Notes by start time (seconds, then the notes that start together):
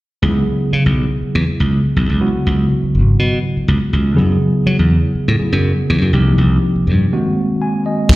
0.22 C#2 C#3 F#3 B3 E4 G#4
0.73 C#3
0.86 B1
1.22 muted slap bass stroke
1.35 E2
1.47 muted slap bass stroke
1.60 C#2
1.96 B1
2.09 C#2
2.21 C#3 F#3 B3 E4 F#4
2.46 C#2
2.83 muted slap bass stroke
2.95 G#1
3.19 B2
3.57 muted slap bass stroke
3.68 C#2
3.93 C#2
4.16 F#2 C#3 F#3 B3 E4 G#4
4.67 F#3
4.79 E2
5.15 muted slap bass stroke
5.28 A2
5.39 C#3 F#3 B3 E4 G#4, muted slap bass stroke
5.52 F#2
5.90 E2
6.02 F#2
6.13 C2 C3 F3 A#3 D#4 G4
6.38 C2
6.76 muted slap bass stroke
6.87 G2
7.13 D#3 G#3 A#3 C4 F#4
7.62 G#5
7.86 D#5
8.09 C#2 C#3 F#3 B3 E4 G#4, kick, crash